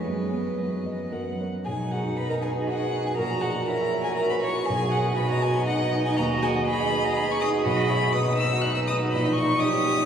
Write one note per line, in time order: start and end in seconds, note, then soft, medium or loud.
0.02 1.09 F#2 soft
0.02 0.59 G#3 medium
0.02 1.10 B4 soft
0.02 1.14 D#5 soft
0.32 0.74 B3 soft
0.58 1.39 F#3 soft
0.58 1.02 B4 soft
0.86 1.12 D#5 soft
1.11 1.65 F#2 soft
1.11 1.19 A#4 soft
1.11 1.45 F#5 soft
1.41 1.64 A#4 soft
1.41 1.64 C#5 soft
1.65 3.14 B1 soft
1.65 2.69 D#4 medium
1.65 1.73 G#4 medium
1.65 1.93 G#5 medium
1.80 2.00 F#4 soft
1.91 2.15 F#4 soft
1.91 2.05 G#4 soft
1.91 2.18 F#5 medium
2.05 2.26 F#4 soft
2.16 2.30 B4 medium
2.16 2.38 B4 soft
2.16 2.30 B5 medium
2.29 2.43 A#4 medium
2.29 2.51 D#5 soft
2.29 2.35 A#5 medium
2.41 2.68 G#4 medium
2.41 2.64 B4 soft
2.41 2.50 G#5 medium
2.56 2.76 F#4 soft
2.67 3.04 F#4 medium
2.67 3.19 G#4 medium
2.67 2.89 D#5 soft
2.67 3.08 F#5 medium
2.81 3.01 B4 soft
2.93 3.13 D#4 soft
3.05 3.18 F#4 soft
3.05 3.10 G#4 medium
3.05 3.16 G#5 medium
3.16 4.65 A#1 soft
3.16 3.69 F#4 medium
3.16 3.24 A#4 medium
3.16 3.43 A#5 medium
3.31 3.50 F#4 soft
3.41 3.51 F#4 medium
3.41 3.55 G#4 soft
3.41 3.64 F#5 medium
3.56 3.75 F#4 soft
3.65 4.18 E4 medium
3.65 4.05 A#4 medium
3.65 3.88 C#5 soft
3.65 4.03 A#5 medium
3.81 4.01 E5 soft
3.93 4.13 C#5 soft
4.04 4.26 F#4 soft
4.04 4.16 G#4 medium
4.04 4.16 G#5 medium
4.16 4.67 F#4 medium
4.16 4.32 A#4 medium
4.16 4.39 E5 soft
4.16 4.29 A#5 medium
4.30 4.42 B4 medium
4.30 4.51 C#5 soft
4.30 4.35 B5 medium
4.41 4.51 C#5 medium
4.41 4.67 C#6 medium
4.45 4.64 E4 soft
4.57 4.69 F#4 soft
4.66 5.17 G#4 medium
4.66 7.60 D#5 medium
4.66 4.93 G#5 medium
4.70 6.14 B1 medium
4.82 5.01 F#4 medium
4.91 5.06 G#4 soft
4.91 5.17 F#5 medium
5.06 5.26 F#4 medium
5.16 5.65 F#4 medium
5.16 5.39 B4 medium
5.16 5.30 B5 medium
5.31 5.51 D#5 medium
5.31 5.43 A#5 medium
5.42 5.63 B4 medium
5.42 5.66 G#5 medium
5.58 5.77 F#4 medium
5.66 6.18 D#4 medium
5.66 5.89 D#5 medium
5.66 6.04 F#5 medium
5.81 6.00 B4 medium
5.93 6.13 D#4 medium
6.05 6.17 F#4 medium
6.05 6.17 G#5 medium
6.17 7.61 D#2 medium
6.17 6.66 F#4 medium
6.17 6.25 A#5 medium
6.30 6.50 F#4 medium
6.42 6.55 G#4 medium
6.42 6.50 G#5 medium
6.56 6.75 F#4 medium
6.67 7.66 G#4 medium
6.67 6.87 B4 medium
6.67 7.06 B5 medium
6.80 6.99 D#5 medium
6.92 7.11 B4 medium
7.04 7.23 F#4 medium
7.04 7.18 A#5 medium
7.16 7.36 D#5 medium
7.16 7.32 B5 loud
7.28 7.47 B4 medium
7.28 7.40 C#6 medium
7.40 7.60 D#4 medium
7.40 7.49 D#6 loud
7.52 7.65 F#4 medium
7.65 9.08 B1 medium
7.65 7.90 F#4 medium
7.65 7.91 D#5 medium
7.65 8.14 B5 medium
7.78 7.97 F#4 medium
7.88 8.16 E4 medium
7.88 8.02 G#4 medium
7.88 8.15 C#5 medium
8.02 8.21 F#4 medium
8.13 9.61 D#4 medium
8.13 9.12 B4 medium
8.13 8.34 B4 medium
8.13 8.37 D#6 loud
8.27 8.46 D#5 medium
8.38 8.58 B4 medium
8.38 8.63 E6 medium
8.52 8.71 F#4 medium
8.61 8.83 D#5 medium
8.61 8.74 F#6 medium
8.75 8.96 B4 medium
8.75 8.80 E6 medium
8.87 9.08 D#4 medium
8.87 8.95 D#6 medium
9.02 9.13 F#4 medium
9.12 10.05 A#1 medium
9.12 9.61 D#5 medium
9.12 9.34 B5 medium
9.26 9.44 D#4 medium
9.35 9.49 E4 soft
9.35 9.61 C#6 medium
9.50 9.69 D#4 medium
9.59 10.05 G4 medium
9.59 9.80 G4 medium
9.59 10.05 C#5 medium
9.59 10.05 D#6 loud
9.73 9.92 C#5 medium
9.86 10.05 G4 medium
9.97 10.05 D#4 medium